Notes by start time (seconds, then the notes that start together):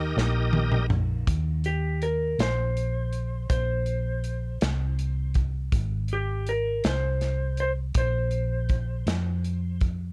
Already playing: D#2 D#3 A#3 D#4 G4 A#4 D#5
0.17 A#1, snare
0.53 high tom
0.72 mid tom
0.90 mid tom
1.27 D#2, kick, closed hi-hat
1.64 G4, closed hi-hat
2.02 A#4, closed hi-hat
2.39 A#1 C5, snare, closed hi-hat
2.77 closed hi-hat
3.13 closed hi-hat
3.50 A#1 C5, kick, closed hi-hat
3.86 closed hi-hat
4.24 closed hi-hat
4.61 C2, snare, closed hi-hat
4.99 closed hi-hat
5.34 kick, closed hi-hat
5.72 G#1, kick, closed hi-hat
6.08 closed hi-hat
6.13 G4
6.47 A#4, closed hi-hat
6.84 C2 C5, snare, closed hi-hat
7.21 snare, closed hi-hat
7.57 C5, closed hi-hat
7.95 A#1 C5, kick, closed hi-hat
8.31 closed hi-hat
8.69 kick, closed hi-hat
9.06 F2, snare, closed hi-hat
9.44 closed hi-hat
9.81 kick, closed hi-hat